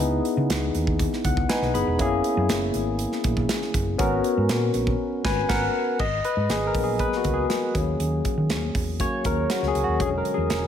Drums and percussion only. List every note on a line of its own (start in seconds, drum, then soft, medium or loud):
0.00 closed hi-hat loud
0.25 closed hi-hat medium
0.50 snare loud
0.50 closed hi-hat medium
0.75 closed hi-hat medium
0.87 kick medium
0.99 kick loud
0.99 closed hi-hat medium
1.13 snare soft
1.24 kick loud
1.24 closed hi-hat medium
1.37 kick loud
1.50 snare loud
1.50 closed hi-hat loud
1.62 snare soft
1.75 closed hi-hat medium
1.99 kick loud
1.99 closed hi-hat medium
2.24 closed hi-hat medium
2.49 snare loud
2.49 closed hi-hat loud
2.74 closed hi-hat medium
2.99 closed hi-hat medium
3.12 snare soft
3.24 kick medium
3.24 closed hi-hat medium
3.37 kick medium
3.49 snare loud
3.49 closed hi-hat loud
3.62 snare soft
3.74 kick loud
3.74 closed hi-hat medium
3.99 kick loud
3.99 closed hi-hat medium
4.24 closed hi-hat medium
4.49 snare loud
4.49 closed hi-hat medium
4.74 closed hi-hat medium
4.87 kick medium
5.25 kick loud
5.25 snare loud
5.25 crash medium
5.49 kick loud
5.49 snare loud
5.49 crash medium
5.99 kick loud
5.99 crash medium
6.24 closed hi-hat medium
6.50 snare loud
6.50 closed hi-hat medium
6.74 kick medium
6.74 open hi-hat medium
6.99 kick medium
6.99 closed hi-hat medium
7.12 snare soft
7.24 kick medium
7.24 closed hi-hat medium
7.50 snare loud
7.50 closed hi-hat medium
7.75 kick loud
7.75 closed hi-hat medium
8.00 closed hi-hat medium
8.25 kick medium
8.25 closed hi-hat medium
8.50 snare loud
8.50 closed hi-hat medium
8.75 kick loud
8.75 open hi-hat medium
9.00 kick medium
9.00 closed hi-hat medium
9.24 kick loud
9.24 closed hi-hat medium
9.50 snare loud
9.50 closed hi-hat medium
9.63 snare soft
9.75 closed hi-hat medium
10.00 kick loud
10.00 closed hi-hat medium
10.25 closed hi-hat medium
10.50 snare loud
10.50 closed hi-hat medium